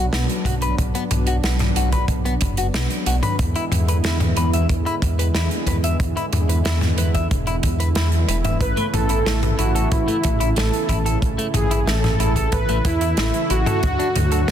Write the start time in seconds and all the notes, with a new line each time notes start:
Already playing: F#3 B3 D4
0.13 B1 B3, snare, closed hi-hat
0.30 closed hi-hat
0.45 B1 F#4, kick, closed hi-hat, mid tom
0.62 B4, closed hi-hat
0.78 B1, kick, closed hi-hat
0.95 B3, closed hi-hat
1.11 B1, closed hi-hat, mid tom
1.27 F#4, closed hi-hat
1.44 B1 B3, snare, closed hi-hat
1.59 snare, closed hi-hat, mid tom
1.76 B1 F#4, closed hi-hat
1.92 B4, kick, closed hi-hat
2.08 B1, kick, closed hi-hat
2.25 B3, closed hi-hat
2.41 F#1, kick, closed hi-hat
2.57 F#4, closed hi-hat
2.74 B1 B3, snare, closed hi-hat
2.90 closed hi-hat
3.06 B1 F#4, closed hi-hat
3.23 B4, closed hi-hat, mid tom
3.39 E2 D3 E3 E4, kick, closed hi-hat
3.55 E4, closed hi-hat
3.72 E2, closed hi-hat, mid tom
3.88 B4, closed hi-hat
4.04 E2 E4, snare, closed hi-hat
4.20 closed hi-hat, mid tom
4.37 E2 B4, closed hi-hat
4.53 E5, closed hi-hat
4.69 E2, kick, closed hi-hat
4.86 E4, closed hi-hat
5.02 E2, kick, closed hi-hat
5.19 B4, closed hi-hat
5.35 E2 E4, snare, closed hi-hat
5.51 closed hi-hat
5.66 E2 B4, kick, closed hi-hat, mid tom
5.84 E5, closed hi-hat
6.00 E2, kick, closed hi-hat
6.17 E4, closed hi-hat
6.33 E2, closed hi-hat, mid tom
6.49 B4, closed hi-hat
6.65 E2 E4, snare, closed hi-hat
6.81 snare, closed hi-hat, mid tom
6.98 E2 B4, closed hi-hat
7.14 E5, kick, closed hi-hat
7.31 E1, kick, closed hi-hat
7.47 E4, closed hi-hat
7.63 E2, kick, closed hi-hat
7.80 B4, closed hi-hat
7.95 E2 E4, snare, closed hi-hat
8.12 closed hi-hat
8.28 E1 B4, closed hi-hat
8.45 E5, closed hi-hat, mid tom
8.61 A1 C#3 A3 B4, kick, closed hi-hat
8.77 A3, closed hi-hat
8.94 A1 A4, closed hi-hat, mid tom
9.09 E4, closed hi-hat
9.26 A1 A3, snare, closed hi-hat
9.43 closed hi-hat, mid tom
9.59 A1 E4 F#4, closed hi-hat
9.75 A4, closed hi-hat
9.92 A1 E4, kick, closed hi-hat
10.08 A3, closed hi-hat
10.24 A1, kick, closed hi-hat
10.40 E4, closed hi-hat
10.56 A1 A3 A4, snare, closed hi-hat
10.74 closed hi-hat
10.89 A1 E4, kick, closed hi-hat, mid tom
11.06 A4, closed hi-hat
11.22 A1, kick, closed hi-hat
11.38 A3, closed hi-hat
11.54 A1 G#4, closed hi-hat, mid tom
11.71 E4, closed hi-hat
11.87 A1 A3 A4, snare, closed hi-hat
12.04 snare, closed hi-hat, mid tom
12.20 A1 E4, closed hi-hat
12.36 A4, kick, closed hi-hat
12.52 A1 B4, kick, closed hi-hat
12.69 A3, closed hi-hat
12.85 E2 E4, kick, closed hi-hat
13.01 E4, closed hi-hat
13.17 A1 A3, snare, closed hi-hat
13.34 closed hi-hat
13.50 A1 E4 F#4, closed hi-hat
13.66 A4, closed hi-hat, mid tom
13.83 D2 D3 F#3, kick, closed hi-hat
13.99 D4, closed hi-hat
14.16 D2, closed hi-hat, mid tom
14.32 A4, closed hi-hat
14.48 D2, snare